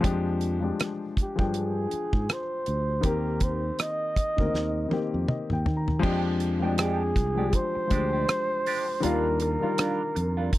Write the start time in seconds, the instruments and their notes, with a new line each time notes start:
0.01 fingered electric bass F2, grand piano F3 G#3 D4 G4, kick, closed hi-hat
0.41 closed hi-hat
0.60 grand piano F3 G#3 D4
0.64 grand piano G4
0.80 cross-stick, closed hi-hat
1.17 muted fingered electric bass stroke, kick, closed hi-hat
1.22 flugelhorn G4
1.36 fingered electric bass G2, grand piano F3 D4 G#4 G5, kick
1.54 closed hi-hat
1.58 flugelhorn G#4
1.91 muted fingered electric bass stroke, closed hi-hat
2.13 fingered electric bass G#2, kick
2.29 flugelhorn C5, cross-stick, closed hi-hat
2.66 fingered electric bass D2, closed hi-hat
3.01 fingered electric bass D#2, grand piano D#3 A#3 C4 G4, kick, closed hi-hat
3.07 flugelhorn A#4
3.40 flugelhorn C5, kick, closed hi-hat
3.79 flugelhorn D#5, cross-stick, closed hi-hat
4.16 muted fingered electric bass stroke, kick, cross-stick, closed hi-hat
4.37 fingered electric bass D2, grand piano D#3 A#3 C4 A#4, kick
4.54 fingered electric bass D#2, snare
4.89 grand piano D#3 A#3 C4, muted fingered electric bass stroke, high tom
4.93 grand piano G4
5.14 fingered electric bass F2
5.28 grand piano D#5, muted fingered electric bass stroke, mid tom
5.50 fingered electric bass D#2, grand piano G5, mid tom
5.66 fingered electric bass D#3, floor tom
5.77 grand piano A#5
5.88 floor tom
5.99 grand piano F3 G#3 D4 G4, clean electric guitar G#3 D4, kick, crash
6.04 fingered electric bass F2, clean electric guitar G4
6.40 muted clean electric guitar stroke, closed hi-hat
6.60 grand piano F3 G#3 D4, clean electric guitar G#3 D4 G4
6.64 grand piano G5
6.78 clean electric guitar G#3 D4 G4, flugelhorn G#4, cross-stick, closed hi-hat
7.16 fingered electric bass C2, muted clean electric guitar stroke, kick, cross-stick, closed hi-hat
7.35 grand piano F3 G#3 D4 G4, clean electric guitar D4 G4
7.39 clean electric guitar G#3
7.53 flugelhorn C5, muted clean electric guitar stroke, kick, closed hi-hat
7.75 muted clean electric guitar stroke, muted fingered electric bass stroke
7.87 grand piano F3 G#3 D4 G4, clean electric guitar G#3, kick, closed hi-hat
7.91 fingered electric bass D2, clean electric guitar D4 G4
8.13 clean electric guitar G#3 D4 G4
8.29 muted clean electric guitar stroke, cross-stick, closed hi-hat
8.66 clean electric guitar G#3 D4 G4, open hi-hat
8.88 muted clean electric guitar stroke
9.00 fingered electric bass D#2, grand piano D#3 G3 D4 F4, clean electric guitar G3, flugelhorn A#4, closed hi-hat
9.05 clean electric guitar D4 F4
9.40 flugelhorn A#4, muted clean electric guitar stroke, closed hi-hat
9.59 grand piano D#3 G3 D4 F4, clean electric guitar F4, muted fingered electric bass stroke
9.64 clean electric guitar G3 D4
9.78 clean electric guitar G3 D4 F4, cross-stick, closed hi-hat
10.15 fingered electric bass F2, muted clean electric guitar stroke, closed hi-hat
10.37 clean electric guitar G3 D4 F4
10.53 kick, closed hi-hat